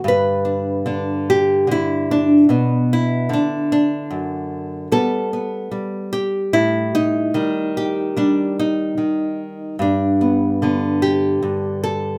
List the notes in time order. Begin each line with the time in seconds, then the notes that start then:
Already playing: D3
0.04 G2
0.08 B4
0.45 D4
0.86 D3 D4
1.30 G4
1.67 D3
1.71 E4
2.11 D4
2.49 B2 B3
2.93 E4
3.29 D3
3.33 D4
3.72 D4
4.10 F#2
4.92 G3 B3 A4
5.33 B3
5.71 G3
6.13 G4
6.53 A2 E4
6.95 D#4
7.34 D#3 G3
7.77 G4
8.17 G3 D4
8.59 D#4
8.98 D#3
9.79 G2 D4
10.21 B3
10.62 D3 B3
11.02 G4
11.43 G2
11.84 A4